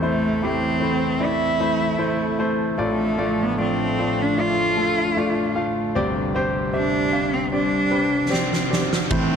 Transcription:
Already playing: A1 E2 E3 A3 C4 E4 A4 C5
0.02 A3 E4 C5
0.42 A3 C4 E4 G4
0.80 A3 E4 C5
1.20 A3 E4 D5
1.25 E4
1.60 A3 E4 C5
1.99 A3 E4 C5
2.39 A3 E4 C5
2.78 A1 A2 F3 A3 D4 F4 D5
3.18 A3 F4 D5
3.43 B3
3.57 A3 F4 D5
3.62 C4
3.99 A3 F4 D5
4.22 D4
4.37 A3 F4 D5
4.77 A3 F4 A4
5.17 A3 F4 D5
5.55 A3 F4 F5
5.95 G1 D2 C3 G3 C4 G4 D5
6.35 C4 G4 C5
6.73 C4 D4 G4 E5
7.12 C4 G4 F5
7.34 C4
7.52 C4 D4 G4 D5
7.91 C4 G4 B4
8.30 C4 G4 D5, snare
8.53 snare
8.70 C4 G4 D5, snare
8.93 snare
9.10 A2 C3 E3 A3 C4 E4 A4 C5, kick, crash

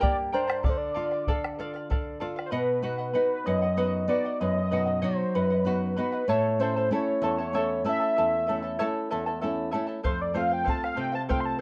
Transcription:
Already playing: G2
0.00 A#3 G4 A#4 D5 G5 A#5, bombo rim, bombo low
0.32 D4 A#4 C5 D5 G5 A#5
0.47 A#4 D5 A#5, bombo rim
0.63 D3 A4 D5 F5, bombo rim, bombo low
0.69 C5
0.77 D5
0.94 F4 A4 D5 F5
1.11 D5 F5, bombo rim
1.27 A4 D5 F5, bombo low
1.44 bombo rim
1.59 F4 A4 D5 F5
1.74 D5 F5, bombo rim
1.90 D4 A4 D5 F5, bombo rim, bombo low
2.20 F4 A4 D5 F5
2.36 D5 F5, bombo rim
2.46 C5
2.51 B2 B4 D#5 F#5
2.82 B3 D#4 F#4 B4 D#5 F#5
2.98 D#5 F#5
3.13 B3 D#4 F#4 B4 D#5 F#5
3.46 F#2 B4 D#5 F#5
3.62 D#5 F#5
3.77 B3 D#4 F#4 B4 D#5 F#5
4.08 B3 D#4 F#4 B4 D5 D#5 F#5
4.25 D#5 F#5
4.40 F#2 B4 D#5 F#5
4.71 B2 D#4 F#4 B4 D#5 F#5
4.86 D#5 F#5
5.02 F#3 D#4 F#4 C5 D#5 F#5
5.35 F#2 B4 D#5 F#5
5.50 D#5 F#5
5.65 B3 D#4 F#4 B4 D#5 F#5
5.97 B3 D#4 F#4 B4 D#5 F#5
6.12 D#5 F#5
6.28 A2 E4 A4 C#5 E5 A5
6.59 A3 C#4 E4 A4 C5 E5 A5
6.76 E4 A4 A5
6.91 A3 C#4 E4 A4 C#5 E5 A5
7.22 E2 E4 A4 C#5 E5 A5
7.38 E4 A4 A5
7.53 A3 C#4 E4 A4 C#5 E5 A5
7.84 A3 C#4 E4 A4 E5 A5
7.89 E5
8.00 E4 A4 A5
8.17 E2 E4 A4 E5 A5
8.47 A3 C#4 E4 A4 E5 A5
8.62 E4 A4 A5
8.79 A3 C#4 E4 A4 C#5 E5 A5
9.11 E2 E4 A4 E5 A5
9.26 E4 A4 A5
9.41 A3 C#4 E4 A4 E5 A5
9.71 A3 C#4 E4 A4 E5 A5
9.87 E4 A4 A5
10.03 F2 A4 C5 F5, bombo low
10.21 D5
10.34 A3 C4 F4 A4 C5 F5, bombo rim
10.50 C5 F5 G5
10.64 A3 C4 A4 C5 F5, bombo low
10.68 F4 A5
10.84 F5, bombo rim
10.96 C3 A4 C5 F5
11.00 G5
11.12 C5 F5 A5
11.29 A3 C4 F4 A4 C5 F5 G5, bombo rim, bombo low
11.40 C6
11.45 A5

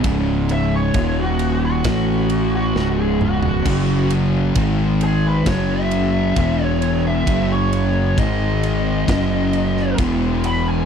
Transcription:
0.04 C#1 C#2 G#2 C#3, kick, ride
0.49 E5, ride
0.76 C#5
0.94 D#1 D#2 A#2 D#3, kick, ride
1.20 F#4
1.39 ride
1.65 F#4
1.84 A1 A2 E3 A3, kick, snare, ride
2.30 ride
2.55 F#4
2.75 C#1 C#2 G#2 C#3, snare
3.01 G#4
3.21 F#4, mid tom
3.43 floor tom
3.65 F#1 F#2 C#3 F#3, kick, crash
4.10 ride
4.55 G#1 G#2 D#3 G#3, kick, ride
5.01 G#4, ride
5.27 B4
5.46 F#1 F#2 C#3 F#3 C#5, kick, snare, ride
5.72 E5
5.91 ride
6.36 E1 E2 B2 E3, kick, ride
6.66 C#5
6.82 ride
7.07 E5
7.27 F#1 F#2 C#3 F#3, kick, ride
7.53 C#5
7.73 ride
8.18 G#1 G#2 D#3 G#3 D#5, kick, ride
8.63 ride
9.08 F#1 F#2 C#3 F#3, kick, snare, ride
9.53 ride
9.77 snare
9.98 E1 E2 B2 E3, kick, ride
10.44 B5, ride
10.69 G#5

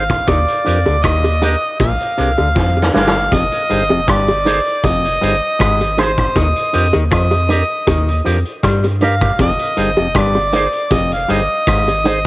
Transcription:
Already playing: G#1 F5
0.10 kick, cross-stick, closed hi-hat
0.27 D#2 D#3 D5, kick, closed hi-hat, high bongo
0.48 closed hi-hat
0.65 F2 F3 D4 G4 A#4, closed hi-hat
0.86 D2 D3, closed hi-hat, high bongo
1.03 D#2 D#3 D#5, kick, cross-stick, closed hi-hat
1.24 closed hi-hat, high bongo
1.42 D4 G4 A#4, closed hi-hat, high bongo, low bongo
1.80 A#1 A#2 F5, kick, closed hi-hat, high bongo
2.01 closed hi-hat
2.17 C2 C3 D4 G#4 A#4, closed hi-hat
2.38 D2 D3, muted clean electric guitar stroke, high bongo
2.55 F2 F3, kick, snare
2.77 high bongo
2.82 snare
2.93 G1 G2 D4 G#4 A#4 F5, snare, low bongo
3.07 snare
3.31 F1 F2 D#5, kick, closed hi-hat, high bongo
3.52 closed hi-hat
3.69 G1 G2 D#4 G#4 C5, closed hi-hat
3.89 F1 F2, high bongo
4.07 G1 G2 D5, kick, cross-stick, closed hi-hat
4.28 closed hi-hat, high bongo
4.45 D#4 G#4 C5, closed hi-hat, low bongo
4.65 closed hi-hat
4.84 F1 F2 D#5, kick, closed hi-hat, high bongo
5.05 closed hi-hat
5.21 G1 G2 D#4 G#4 C5, closed hi-hat
5.59 G#1 G#2, kick, cross-stick, closed hi-hat
5.81 closed hi-hat, high bongo
5.97 D#4 G#4 C5, cross-stick, closed hi-hat, low bongo
6.18 kick, cross-stick
6.36 D#2 D#3 D#5, kick, closed hi-hat, high bongo
6.56 closed hi-hat
6.73 F2 F3 D4 G4 A#4, closed hi-hat
6.93 D#2 D#3, closed hi-hat, high bongo
7.11 F2 F3 D#5, kick, cross-stick, closed hi-hat
7.31 closed hi-hat, high bongo
7.49 D4 G4 A#4, closed hi-hat, low bongo
7.87 D#2 D#3, kick, closed hi-hat, high bongo
8.08 closed hi-hat
8.25 F2 F3 D4 G4 A#4, closed hi-hat
8.45 closed hi-hat
8.63 G2 G3, kick, cross-stick, closed hi-hat
8.84 closed hi-hat, high bongo
9.01 D4 G4 A#4 F5, closed hi-hat, low bongo
9.21 D4 G4 A#4, kick, cross-stick, closed hi-hat
9.39 F1 F2 D#5, kick, closed hi-hat, high bongo
9.59 closed hi-hat
9.77 G1 G2 D#4 G#4 C5, closed hi-hat
9.97 F1 F2, high bongo
10.15 G1 G2 D5, kick, cross-stick, closed hi-hat
10.35 closed hi-hat, high bongo
10.53 D#4 G#4 C5, closed hi-hat, low bongo
10.72 closed hi-hat
10.91 F1 F2 D#5, kick, closed hi-hat, high bongo
11.12 F5, closed hi-hat
11.28 G1 G2 D#4 G#4 C5 D#5, closed hi-hat
11.67 G#1 G#2, kick, cross-stick, closed hi-hat
11.88 closed hi-hat, high bongo
12.04 D#4 G#4 C5, closed hi-hat, low bongo

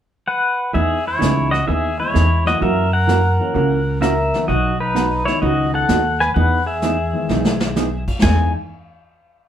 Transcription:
0.28 B4 F#5
0.73 E2 E3 B3 D#4 G#4 E5, brush sweep, kick
1.07 E4 C#5
1.19 C#2 E3 G#3 B3 D#4 G#4, snare, hi-hat pedal
1.51 F#4 D#5, snare
1.67 D#2 E3 B3 D#4 G#4 E5, brush sweep, kick
1.99 E3 G#3 B3 E4 C#5 D#5
2.14 E2 E3 B3 D#4 G#4, snare, hi-hat pedal
2.45 E3 F#3 A#3 E4 F#4 D#5, snare
2.61 F#2 C#3 E3 A#3 C#4 F#4 A#4 E5, brush sweep, kick
2.93 A#4 F#5
3.07 C#3 E3 A#3 C#4 F#4, snare, hi-hat pedal
3.39 E3 F#3 A#3 C#4
3.54 C#2 C#3 E3 A#3 C#4 F#4, brush sweep, kick
4.00 C#3 E3 A#3 C#4 F#4 A#4 E5, snare, hi-hat pedal
4.34 D#3 F#3 B3 F#4, snare
4.47 B1 B2 F#3 B3 D#4 F#4 D#5, brush sweep, kick
4.80 D#4 B4
4.95 B2 F#3 B3 D#4 F#4, snare, hi-hat pedal
5.25 D#3 F#3 B3 D#4 E4 C#5, snare
5.42 C#2 B2 F#3 B3 D#4 F#4 D#5, brush sweep, kick
5.74 A4 F#5
5.89 D#2 B2 F#3 B3 D#4 F#4, snare, hi-hat pedal
6.20 B4 G#5, snare
6.34 E2 E3 B3 D#4 G#4 B4 F#5, brush sweep, kick
6.66 G#4 E5
6.82 E3 B3 D#4 G#4, snare, hi-hat pedal
7.13 D#3 E3 G#3 B3
7.29 B1 E3 B3 D#4 G#4, snare
7.45 snare
7.60 snare
7.76 E3 B3 D#4 G#4, snare, hi-hat pedal
8.08 kick, crash
8.22 E2 E3 G#3 B3 D#4 G#4 G#5, kick, snare, ride bell

